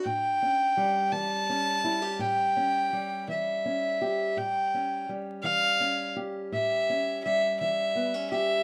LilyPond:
<<
  \new Staff \with { instrumentName = "Fiddle" } { \time 12/8 \key a \dorian \tempo 4. = 56 g''4. a''4. g''4. e''4. | g''4 r8 f''4 r8 e''4 e''8 e''4 e''8 | }
  \new Staff \with { instrumentName = "Steel-string acoustic guitar" } { \time 12/8 \key a \dorian << { r8 cis'8 g4 cis'8 e'16 g'8. cis'8 g4 cis'8 g'8 | r8 cis'8 g4 cis'8 g'4 cis'8 g4 b16 cis'16 g'8 | } \\ { a,4 r8 e4 r8 a,4 r8 e4 r8 | a,4 r8 e4 r8 a,4 r8 e4 r8 | } >> }
>>